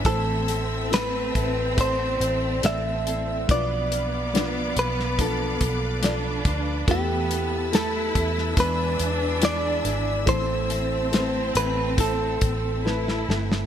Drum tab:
HH |x-x-x-x-x-x-x-x-|x-x-x-x-x-x-x-x-|x-x-x-x-x-x-x-x-|x-x-x-x-x-x-----|
SD |----o-------o---|----o--o----o---|----o--o----o---|----o-------oooo|
BD |o-----o-o-------|o-------o-o---o-|o-----o-o-------|o-------o-o-----|